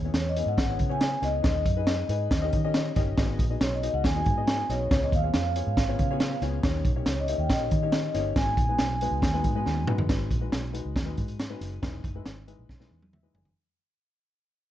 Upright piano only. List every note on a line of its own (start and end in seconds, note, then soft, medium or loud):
0.04 0.30 B3 medium
0.04 0.30 C#4 medium
0.04 0.30 E4 medium
0.04 0.30 G#4 medium
0.04 0.30 C#5 medium
0.37 0.62 B3 medium
0.37 0.63 C#4 medium
0.37 0.62 E4 medium
0.37 0.63 G#4 medium
0.37 0.63 C#5 medium
0.69 0.86 B3 medium
0.69 0.86 C#4 medium
0.69 0.86 E4 medium
0.69 0.86 G#4 medium
0.69 0.86 C#5 medium
0.89 1.16 B3 medium
0.89 1.16 C#4 medium
0.89 1.16 E4 medium
0.89 1.16 G#4 medium
0.89 1.16 C#5 medium
1.21 1.39 B3 medium
1.21 1.40 C#4 medium
1.21 1.40 E4 medium
1.21 1.40 G#4 medium
1.21 1.40 C#5 medium
1.42 1.69 D#4 medium
1.42 1.69 G#4 medium
1.42 1.70 B4 medium
1.76 2.03 D#4 medium
1.76 2.03 G#4 medium
1.76 2.03 B4 loud
2.09 2.31 D#4 medium
2.09 2.31 G#4 medium
2.09 2.31 B4 loud
2.41 2.59 C#4 medium
2.41 2.59 D#4 medium
2.41 2.59 G4 medium
2.41 2.59 A#4 medium
2.41 2.59 D#5 loud
2.64 2.90 C#4 loud
2.64 2.90 D#4 medium
2.64 2.90 G4 medium
2.64 2.90 A#4 medium
2.64 2.90 D#5 loud
2.96 3.13 C#4 medium
2.96 3.13 D#4 medium
2.96 3.13 G4 medium
2.96 3.13 A#4 medium
2.96 3.13 D#5 loud
3.17 3.43 B3 loud
3.17 3.44 D#4 medium
3.17 3.43 F#4 medium
3.17 3.43 G#4 medium
3.17 3.43 D#5 loud
3.50 3.76 B3 medium
3.50 3.76 D#4 medium
3.50 3.76 F#4 medium
3.50 3.76 G#4 medium
3.50 3.76 D#5 medium
3.83 4.09 B3 medium
3.83 4.09 D#4 medium
3.83 4.09 F#4 medium
3.83 4.09 G#4 medium
3.83 4.09 D#5 medium
4.15 4.32 B3 medium
4.15 4.33 D#4 medium
4.15 4.32 F#4 medium
4.15 4.32 G#4 medium
4.15 4.33 D#5 medium
4.37 4.63 B3 medium
4.37 4.63 D#4 medium
4.37 4.63 F#4 medium
4.37 4.63 G#4 medium
4.37 4.63 D#5 medium
4.70 4.87 B3 medium
4.70 4.87 D#4 medium
4.70 4.87 F#4 medium
4.70 4.87 G#4 medium
4.70 4.87 D#5 medium
4.91 5.17 B3 medium
4.91 5.17 C#4 medium
4.91 5.17 F4 medium
4.91 5.17 G#4 medium
4.91 5.17 C#5 medium
5.23 5.49 B3 medium
5.23 5.49 C#4 medium
5.23 5.49 F4 medium
5.23 5.49 G#4 medium
5.23 5.49 C#5 medium
5.56 5.82 B3 medium
5.56 5.82 C#4 medium
5.56 5.82 F4 medium
5.56 5.82 G#4 medium
5.56 5.82 C#5 medium
5.88 6.05 B3 medium
5.88 6.06 C#4 medium
5.88 6.05 F4 medium
5.88 6.06 G#4 medium
5.88 6.06 C#5 loud
6.11 6.36 B3 loud
6.11 6.36 C#4 medium
6.11 6.36 F4 medium
6.11 6.36 G#4 medium
6.11 6.36 C#5 loud
6.42 6.60 B3 medium
6.42 6.59 C#4 medium
6.42 6.59 F4 medium
6.42 6.59 G#4 medium
6.42 6.59 C#5 loud
6.64 6.90 A#3 loud
6.64 6.90 C#4 medium
6.64 6.90 D#4 medium
6.64 6.90 G4 medium
6.64 6.90 C#5 loud
6.96 7.22 A#3 medium
6.96 7.22 C#4 medium
6.96 7.22 D#4 medium
6.96 7.22 G4 medium
6.96 7.22 C#5 medium
7.29 7.54 A#3 medium
7.29 7.55 C#4 medium
7.29 7.55 D#4 medium
7.29 7.55 G4 medium
7.29 7.55 C#5 medium
7.60 7.78 A#3 medium
7.60 7.78 C#4 medium
7.60 7.78 D#4 medium
7.60 7.78 G4 medium
7.60 7.78 C#5 medium
7.82 8.08 A#3 medium
7.82 8.08 C#4 medium
7.82 8.09 D#4 medium
7.82 8.08 G4 medium
7.82 8.08 C#5 medium
8.14 8.32 A#3 medium
8.14 8.32 C#4 medium
8.14 8.32 D#4 medium
8.14 8.32 G4 medium
8.14 8.32 C#5 loud
8.36 8.62 G#3 medium
8.36 8.62 B3 medium
8.36 8.62 D#4 medium
8.36 8.62 F#4 medium
8.36 8.62 B4 medium
8.69 8.95 G#3 medium
8.69 8.95 B3 medium
8.69 8.95 D#4 medium
8.69 8.95 F#4 medium
8.69 8.95 B4 medium
9.02 9.27 G#3 medium
9.02 9.27 B3 medium
9.02 9.28 D#4 medium
9.02 9.28 F#4 medium
9.02 9.28 B4 loud
9.33 9.51 G#3 medium
9.33 9.51 B3 medium
9.33 9.51 D#4 medium
9.33 9.51 F#4 medium
9.33 9.51 B4 loud
9.55 9.81 G#3 loud
9.55 9.81 B3 medium
9.55 9.81 D#4 medium
9.55 9.81 F#4 medium
9.55 9.81 B4 loud
9.87 10.05 G#3 medium
9.87 10.05 B3 medium
9.87 10.05 D#4 medium
9.87 10.05 F#4 medium
9.87 10.05 B4 medium
10.09 10.35 G#3 medium
10.09 10.35 D#4 medium
10.09 10.35 F#4 medium
10.09 10.36 B4 loud
10.41 10.67 G#3 medium
10.41 10.68 D#4 medium
10.41 10.67 F#4 medium
10.41 10.68 B4 medium
10.73 11.00 G#3 medium
10.73 11.00 D#4 medium
10.73 11.00 F#4 medium
10.73 11.00 B4 medium
11.06 11.41 G#3 medium
11.06 11.41 D#4 medium
11.06 11.41 F#4 medium
11.06 11.41 B4 medium
11.50 11.76 G#3 medium
11.50 11.76 D#4 medium
11.50 11.76 F#4 medium
11.50 11.76 B4 loud
11.82 12.09 G#3 medium
11.82 12.09 D#4 medium
11.82 12.09 E4 medium
11.82 12.08 B4 loud
12.15 12.41 G#3 medium
12.15 12.41 D#4 medium
12.15 12.41 E4 medium
12.15 12.41 B4 medium
12.47 12.74 G#3 medium
12.47 12.74 D#4 medium
12.47 12.74 E4 medium
12.47 12.74 B4 loud
12.80 13.15 G#3 medium
12.80 13.15 D#4 medium
12.80 13.15 E4 medium
12.80 13.15 B4 medium
13.13 13.33 E5 medium
13.23 13.49 G#3 medium
13.23 13.50 D#4 medium
13.23 13.49 E4 medium
13.23 13.49 B4 medium
13.33 13.54 G#5 medium